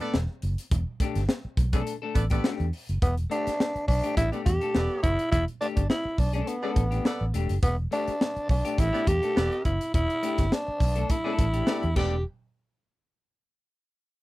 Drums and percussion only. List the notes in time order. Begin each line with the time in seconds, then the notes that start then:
0.00 closed hi-hat
0.14 snare
0.42 closed hi-hat
0.58 closed hi-hat
0.71 kick, closed hi-hat
1.00 kick, closed hi-hat
1.15 snare, closed hi-hat
1.29 snare
1.57 kick, closed hi-hat
1.73 kick, closed hi-hat
1.87 closed hi-hat
2.15 kick, closed hi-hat
2.30 kick, closed hi-hat
2.44 snare
2.60 closed hi-hat
2.73 open hi-hat
2.89 closed hi-hat
3.02 kick, closed hi-hat
3.17 closed hi-hat
3.31 closed hi-hat
3.47 snare, closed hi-hat
3.60 snare
3.76 closed hi-hat
3.88 kick, open hi-hat
4.04 closed hi-hat
4.17 kick, closed hi-hat
4.33 closed hi-hat
4.46 kick, closed hi-hat
4.61 closed hi-hat
4.75 snare
5.04 kick, closed hi-hat
5.19 closed hi-hat
5.32 kick, closed hi-hat
5.48 closed hi-hat
5.62 closed hi-hat
5.77 kick, closed hi-hat
5.90 snare
6.18 kick, open hi-hat
6.33 closed hi-hat
6.47 closed hi-hat
6.76 kick, closed hi-hat
6.92 closed hi-hat
7.05 snare
7.34 closed hi-hat
7.49 closed hi-hat
7.63 kick, closed hi-hat
7.92 closed hi-hat
8.08 closed hi-hat
8.21 snare
8.37 closed hi-hat
8.49 kick, open hi-hat
8.65 closed hi-hat
8.78 kick, closed hi-hat
8.95 closed hi-hat
9.07 kick, closed hi-hat
9.23 closed hi-hat
9.37 snare
9.52 closed hi-hat
9.65 kick, closed hi-hat
9.81 closed hi-hat
9.94 kick, closed hi-hat
10.10 closed hi-hat
10.23 closed hi-hat
10.38 kick, snare, closed hi-hat
10.52 snare
10.80 kick, open hi-hat
10.96 closed hi-hat
11.10 kick, closed hi-hat
11.39 kick, closed hi-hat
11.54 closed hi-hat
11.67 snare
11.83 closed hi-hat
11.96 kick, crash